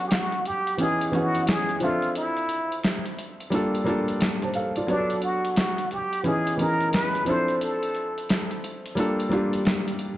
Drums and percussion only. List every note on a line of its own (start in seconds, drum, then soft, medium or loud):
0.11 snare loud
0.11 clap medium
0.11 closed hi-hat medium
0.32 closed hi-hat soft
0.46 closed hi-hat medium
0.67 closed hi-hat soft
0.78 closed hi-hat medium
1.01 closed hi-hat medium
1.13 closed hi-hat medium
1.35 closed hi-hat soft
1.47 snare loud
1.47 clap medium
1.47 closed hi-hat medium
1.69 closed hi-hat medium
1.80 closed hi-hat medium
2.02 closed hi-hat soft
2.15 closed hi-hat medium
2.37 closed hi-hat soft
2.49 closed hi-hat medium
2.72 closed hi-hat soft
2.83 snare loud
2.83 clap medium
2.83 closed hi-hat medium
3.05 closed hi-hat soft
3.18 closed hi-hat medium
3.40 closed hi-hat soft
3.52 closed hi-hat medium
3.75 closed hi-hat soft
3.86 closed hi-hat medium
4.08 closed hi-hat soft
4.20 snare loud
4.20 clap medium
4.20 closed hi-hat medium
4.42 closed hi-hat medium
4.54 closed hi-hat medium
4.76 closed hi-hat medium
4.88 closed hi-hat medium
5.10 closed hi-hat soft
5.22 closed hi-hat medium
5.45 closed hi-hat soft
5.56 snare loud
5.56 clap medium
5.56 closed hi-hat medium
5.78 closed hi-hat soft
5.91 closed hi-hat medium
6.13 closed hi-hat soft
6.24 closed hi-hat medium
6.47 closed hi-hat medium
6.59 closed hi-hat medium
6.81 closed hi-hat soft
6.93 snare medium
6.93 clap medium
6.93 closed hi-hat medium
7.15 closed hi-hat medium
7.26 closed hi-hat medium
7.48 closed hi-hat soft
7.61 closed hi-hat medium
7.83 closed hi-hat soft
7.95 closed hi-hat soft
8.18 closed hi-hat soft
8.29 snare loud
8.29 clap medium
8.29 closed hi-hat medium
8.51 closed hi-hat soft
8.64 closed hi-hat medium
8.86 closed hi-hat soft
8.97 closed hi-hat medium
9.20 closed hi-hat soft
9.32 closed hi-hat medium
9.53 closed hi-hat medium
9.65 snare loud
9.65 clap medium
9.65 closed hi-hat medium
9.88 closed hi-hat medium
9.99 closed hi-hat medium